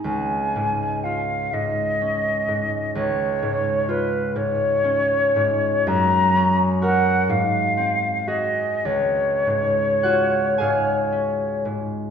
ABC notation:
X:1
M:6/8
L:1/8
Q:3/8=40
K:Db
V:1 name="Flute"
a2 f e3 | d2 _c d3 | b2 g f2 e | d4- d z |]
V:2 name="Harp"
z6 | z6 | z6 | z2 [Gg] [Afa]3 |]
V:3 name="Harp" clef=bass
[D,,A] A,, F A,, D A,, | D,, A,, F A,, D A,, | G,, D [GB] A,, C [GA] | D,, A,, F A,, D A,, |]